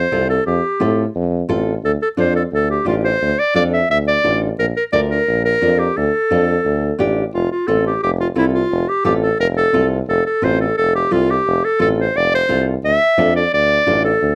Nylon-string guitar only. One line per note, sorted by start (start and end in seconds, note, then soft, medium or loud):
0.12 0.36 C4 medium
0.12 0.36 F4 medium
0.12 0.36 A4 medium
0.80 1.04 C4 medium
0.80 1.05 F4 medium
0.80 1.05 A4 medium
1.49 1.73 C4 medium
1.49 1.73 F4 medium
1.49 1.73 A4 medium
2.17 2.42 D4 medium
2.17 2.42 F4 medium
2.17 2.42 A4 medium
2.85 3.10 D4 medium
2.85 3.10 F4 medium
2.85 3.10 G4 medium
3.54 3.79 D4 medium
3.54 3.79 F4 medium
3.54 3.79 A4 medium
4.24 4.48 D4 medium
4.24 4.48 F4 medium
4.24 4.48 A4 medium
4.92 5.17 D4 medium
4.92 5.17 F4 medium
4.92 5.17 A#4 medium
5.62 5.86 D4 medium
5.62 5.86 F4 medium
5.62 5.86 A#4 medium
6.31 6.54 D4 medium
6.31 6.55 F4 medium
6.31 6.55 A4 medium
6.99 7.23 D4 medium
6.99 7.23 F4 medium
6.99 7.23 G4 medium
7.68 7.92 C4 medium
7.68 7.92 F4 medium
7.68 7.92 A4 medium
8.36 8.60 C4 medium
8.36 8.60 F4 medium
8.36 8.60 A4 medium
9.04 9.29 C4 medium
9.04 9.29 F4 medium
9.04 9.29 A4 medium
9.73 9.98 C4 medium
9.73 9.98 F4 medium
9.73 9.98 A4 medium
10.42 10.66 C4 medium
10.42 10.67 F4 medium
10.42 10.67 A4 medium
11.11 11.35 C4 medium
11.11 11.35 F4 medium
11.11 11.36 A4 medium
11.79 12.04 C4 medium
11.79 12.04 F4 medium
11.79 12.04 A4 medium
12.49 12.73 C4 medium
12.49 12.73 F4 medium
12.49 12.73 A4 medium
13.18 13.42 D4 medium
13.18 13.42 F4 medium
13.18 13.42 A4 medium
13.87 14.11 D4 medium
13.87 14.11 F4 medium
13.87 14.11 A4 medium